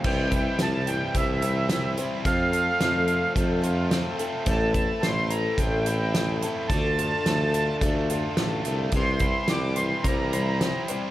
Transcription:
<<
  \new Staff \with { instrumentName = "Accordion" } { \time 4/4 \key c \mixolydian \tempo 4 = 108 g''4 a''8 g''8 e''4. r8 | f''2 r2 | a''4 c'''8 bes''8 g''4. r8 | a''2 r2 |
c'''4 d'''8 c'''8 bes''4. r8 | }
  \new Staff \with { instrumentName = "Twelve-string acoustic guitar" } { \time 4/4 \key c \mixolydian <c e g c' e' c''>4 <g c' e' c''>4 <g c' e' c''>8 <g c' e' c''>8 <g c' e' c''>8 <g c' e' c''>8 | <f a c' f' a'>4 <a c' f' a'>4 <a c' f' a'>8 <c' f' a'>8 <a c' f' a'>8 <c' f' a'>8 | <a, e a c' e' a'>4 <a c' e' a'>4 <a c' e' a'>8 <a c' e' a'>8 <a c' e' a'>8 <a c' e' a'>8 | <d a d' f' a'>4 <a d' f' a'>4 <a d' f' a'>8 <d' f' a'>8 <a d' f' a'>8 <d' f' a'>8 |
<c e g c' e' c''>4 <g c' e' c''>4 <g c' e' c''>8 <g c' e' c''>8 <g c' e' c''>8 <g c' e' c''>8 | }
  \new Staff \with { instrumentName = "Overdriven electric guitar" } { \time 4/4 \key c \mixolydian c8 e'8 g8 e8 g8 e'8 c'8 g8 | f,8 f'8 a8 f8 a8 f'8 c'8 a8 | a,8 e'8 a8 e8 a8 e'8 c'8 a8 | d8 f'8 a8 d8 a8 f'8 d'8 a8 |
c8 e'8 g8 e8 g8 e'8 c'8 g8 | }
  \new Staff \with { instrumentName = "Tuba" } { \clef bass \time 4/4 \key c \mixolydian c,4 c,4 c,2 | f,4 f,4 f,4. r8 | a,,4 a,,4 a,,2 | d,4 d,4 d,4 a,,8 c,8 |
c,4 c,4 c,4. r8 | }
  \new DrumStaff \with { instrumentName = "Drums" } \drummode { \time 4/4 <cymc bd>8 <hh bd>8 <hh sn>8 hh8 <hh bd>8 hh8 <hh sn>8 hh8 | <hh bd>8 hh8 <hh sn>8 hh8 <hh bd>8 hh8 <hh sn>8 hh8 | <hh bd>8 <hh bd>8 <hh sn>8 hh8 <hh bd>8 hh8 <hh sn>8 hh8 | <hh bd>8 hh8 <hh sn>8 hh8 <hh bd>8 hh8 <hh sn>8 hh8 |
<hh bd>8 <hh bd>8 <hh sn>8 hh8 <hh bd>8 hh8 <hh sn>8 hh8 | }
>>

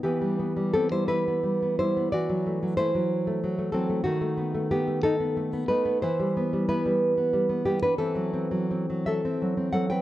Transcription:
\new Staff \with { instrumentName = "Nylon-string guitar" } { \time 6/8 \key e \minor \tempo 4. = 61 << { <b g'>4 <c' a'>16 <e' c''>16 <e' b'>4 <e' c''>8 | <fis' d''>4 <e' c''>4. <c' a'>8 | <a fis'>4 <b g'>8 <dis' a'>4 <dis' b'>8 | <e' c''>4 <e' b'>4. <b g'>16 <d' b'>16 |
<c' a'>4. <a' e''>4 <a' fis''>16 <b' g''>16 | } \\ { e16 g16 b16 g16 b16 g8 b16 g16 b16 g16 b16 | e16 fis16 a16 fis16 a16 fis8 a16 fis16 a16 fis16 a16 | dis16 a16 b16 a8 a8 b16 a16 b16 a16 b16 | e16 g16 b16 g16 b16 g8 b16 g16 b16 g16 b16 |
e16 fis16 c'16 fis16 c'16 fis8 c'16 fis16 c'16 fis16 c'16 | } >> }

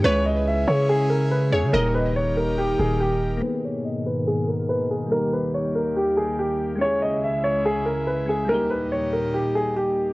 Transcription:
<<
  \new Staff \with { instrumentName = "Synth pluck" } { \time 4/4 \key gis \minor \tempo 4 = 142 b'2 r4. cis''8 | dis''4 r2. | r1 | r1 |
r1 | r1 | }
  \new Staff \with { instrumentName = "Grand piano" } { \time 4/4 \key gis \minor cis''8 dis''8 e''8 cis''8 gis'8 ais'8 b'8 gis'8 | ais'8 b'8 cis''8 ais'8 g'8 gis'8 g'4 | b'8 cis''8 dis''8 b'8 gis'8 ais'8 b'8 gis'8 | ais'8 b'8 cis''8 ais'8 g'8 gis'8 g'4 |
cis''8 dis''8 e''8 cis''8 gis'8 ais'8 b'8 gis'8 | ais'8 b'8 cis''8 ais'8 g'8 gis'8 g'4 | }
  \new Staff \with { instrumentName = "Synth keys" } { \time 4/4 \key gis \minor <gis cis' e' gis'>2.~ <gis cis' e' gis'>8 <gis cis' e' gis'>8 | <g ais dis' g'>1 | <ais b dis' gis'>1 | <g ais dis' g'>1 |
<gis cis' e' gis'>2.~ <gis cis' e' gis'>8 <gis cis' e' gis'>8 | <g ais dis' g'>1 | }
  \new Staff \with { instrumentName = "Analog synth pad" } { \clef bass \time 4/4 \key gis \minor << { <cis e' gis'>1 | <dis g' ais'>1 | <gis, b, ais'>1 | <dis, ais g'>1 |
<cis, gis e'>1 | <dis, g dis'>1 | } \\ { cis'1 | dis'1 | dis1~ | dis1 |
cis1 | ais,1 | } >> }
  \new Staff \with { instrumentName = "808-style bass" } { \clef bass \time 4/4 \key gis \minor cis,4. cis2 e,16 cis16 | dis,,2~ dis,,8 dis,,4. | r1 | r1 |
r1 | r1 | }
>>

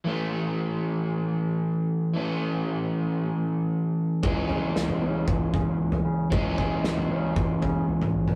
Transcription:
<<
  \new Staff \with { instrumentName = "Overdriven electric guitar" } { \clef bass \time 4/4 \key a \lydian \tempo 4 = 115 <e a cis'>1 | <e a cis'>1 | <e gis cis'>1 | <e gis cis'>1 | }
  \new Staff \with { instrumentName = "Picked electric bass" } { \clef bass \time 4/4 \key a \lydian r1 | r1 | cis,8 cis8 cis,8 cis8 cis,8 cis8 cis,8 cis8 | cis,8 cis8 cis,8 cis8 cis,8 cis8 cis,8 ais,,8 | }
  \new DrumStaff \with { instrumentName = "Drums" } \drummode { \time 4/4 r4 r4 r4 r4 | r4 r4 r4 r4 | <bd tomfh>8 tomfh8 sn16 tomfh8. <bd tomfh>8 <bd tomfh>8 r16 tomfh8. | <bd tomfh>8 <bd tomfh>8 sn16 tomfh8. <bd tomfh>8 <bd tomfh>8 r16 <tomfh toml>8 toml16 | }
>>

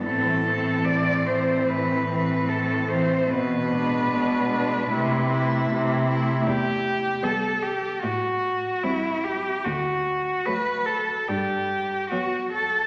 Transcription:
<<
  \new Staff \with { instrumentName = "Cello" } { \time 4/4 \key a \dorian \tempo 4 = 74 a'4 d''8 c''8 b'4 a'8 c''8 | b'2.~ b'8 r8 | g'4 a'8 g'8 fis'4 e'8 g'8 | fis'4 b'8 a'8 g'4 fis'8 a'8 | }
  \new Staff \with { instrumentName = "Cello" } { \time 4/4 \key a \dorian c'8 c'4 c'4 c'4 c'8 | r8 d'4 d'8 e'8 e'4 e'8 | r4 b4 r4 c'4 | r4 a4 r4 b4 | }
  \new Staff \with { instrumentName = "Cello" } { \clef bass \time 4/4 \key a \dorian e8 e4 e4 e4 e8 | r8 gis4 gis8 a8 a4 a8 | r4 g4 r4 g4 | r4 fis4 r4 fis4 | }
  \new Staff \with { instrumentName = "Cello" } { \clef bass \time 4/4 \key a \dorian a,4 a,4 a,4 a,4 | b,4 b,4 c4 c4 | e,4 r4 a,4 r4 | d,4 r4 g,4 r4 | }
>>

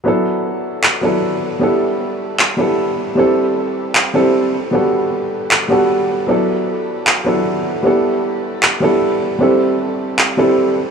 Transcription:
<<
  \new Staff \with { instrumentName = "Grand piano" } { \time 4/4 \key d \major \tempo 4 = 154 <fis b d' e' a'>2~ <fis b d' e' a'>8 <fis b d' e' a'>4. | <g b d' e' a'>2~ <g b d' e' a'>8 <g b d' e' a'>4. | <g c' d' e' a'>2~ <g c' d' e' a'>8 <g c' d' e' a'>4 r8 | <g b d' fis' a'>2~ <g b d' fis' a'>8 <g b d' fis' a'>4. |
<fis b d' e' a'>2~ <fis b d' e' a'>8 <fis b d' e' a'>4. | <g b d' e' a'>2~ <g b d' e' a'>8 <g b d' e' a'>4. | <g c' d' e' a'>2~ <g c' d' e' a'>8 <g c' d' e' a'>4 r8 | }
  \new DrumStaff \with { instrumentName = "Drums" } \drummode { \time 4/4 r4 r4 hc4 r4 | r4 r4 hc4 r4 | r4 r4 hc4 r4 | r4 r4 hc4 r4 |
r4 r4 hc4 r4 | r4 r4 hc4 r4 | r4 r4 hc4 r4 | }
>>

